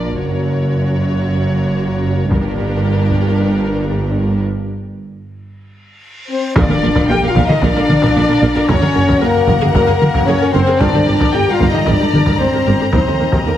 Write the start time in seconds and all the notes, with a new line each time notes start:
Already playing: A#1 A#2 A#3 D4 F4 A#4 D5
0.18 F#1 F#2 C#4 F#4 C#5
2.30 G1 G2 A#3 D4 G4 A#4, taiko
3.10 taiko
4.43 reverse cymbal
6.29 C4 C5
6.56 A#1 A#2 D4 A#4 D5 F5 A#5, taiko, impact
6.68 A#2 A4 A#4, taiko mid
6.82 A#1 A#2 A#4
6.96 A#2 A#4, taiko
7.08 A#1 A#2 G4 A4 A#4 G5
7.22 A#2 A#4
7.26 F4 F5
7.36 A#1 A#2 A#4, taiko
7.45 A#2 D#4 D#5
7.49 A4 A#4, taiko mid
7.62 A#1 A#2 D4 A#4 D5, taiko
7.76 A#2 A4 A#4
7.89 A#1 A#2 A#4, taiko mid
8.02 A#2 A#4, taiko
8.15 A#1 A#2 A4 A#4
8.28 A#2 A#4
8.42 A#1 A#2 A#4
8.55 A#2 A4 A#4
8.68 F#1 F#2 C#4 A#4 C#5 F#5, taiko
8.81 F#2 G#4 A#4, taiko mid
8.94 F#1 F#2 A#4
9.07 F#2 A#4, taiko
9.21 F#1 F#2 A#3 G#4 A#4
9.34 F#2 A#4
9.47 F#1 F#2 A#4, taiko
9.61 F#2 G#4 A#4, taiko mid
9.74 F#1 F#2 A#3 A#4, taiko
9.87 F#2 G#4 A#4
10.00 F#1 F#2 A#4, taiko mid
10.14 F#2 A#4, taiko
10.26 F#1 F#2 C#4 G#4 A#4 C#5
10.41 F#2 A#4
10.53 F#1 F#2 C4 A#4 C5
10.67 F#2 G#4 A#4
10.80 G1 G2 D4 G4 A#4 D5 A#5, taiko
10.94 G2 G4 A4, taiko mid
11.07 G1 G2 G4 A#4
11.20 G2 G4 A#4, taiko
11.33 G1 G2 G4 A4 G5
11.47 G2 G4 A#4 F5
11.51 F4 F5
11.60 G1 G2 G4 A#4, taiko
11.69 D#4 D#5
11.73 G2 G4 A4, taiko mid
11.86 G1 G2 D4 G4 A#4 D5, taiko
11.99 G2 G4 A4
12.13 G1 G2 G4 A#4, taiko mid
12.26 G2 G4 A#4, taiko
12.39 G1 G2 C4 G4 A4 C5
12.53 G2 G4 A#4
12.66 G1 G2 G4 A#4
12.80 G2 G4 A4
12.92 D#2 C4 G4 A#4 C5 D#5, taiko
13.06 D#2 G4 A4, taiko mid
13.19 D#2 G4 A#4
13.32 D#2 G4 A#4, taiko
13.45 D#2 A#3 G4 A4 A#4